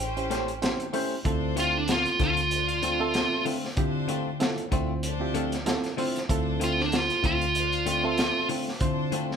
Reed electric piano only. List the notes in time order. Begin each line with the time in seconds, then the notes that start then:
0.17 C#4 E4 G4 C5
0.62 C#4 E4 G4 C5 G5
0.93 C#4 E4 G4 C5
1.25 C4 E4 F4 A4
3.00 C4 F4 A4 E5
3.77 C4 E4 F4 G4
4.40 C4 E4 F4 A4
4.71 C4 E4 F4 C5
5.20 C4 E4 F4 G4
5.66 C4 E4 F4 A4
5.98 C4 E4 F4 C5
6.30 C4 E4 F4 A4
8.04 C4 F4 A4 E5
8.80 C4 E4 F4 C5